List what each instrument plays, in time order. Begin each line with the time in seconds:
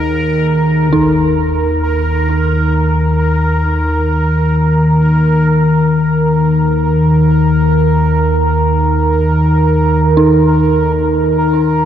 Already playing: synth drone D#2 D#3, ambient pad A#3 D#4 A#4, synth bell G#4, synth texture A#4
0.88 synth drone D#2 D#3, synth texture A#4
0.93 synth bell D#4, impact
10.17 synth bell D#4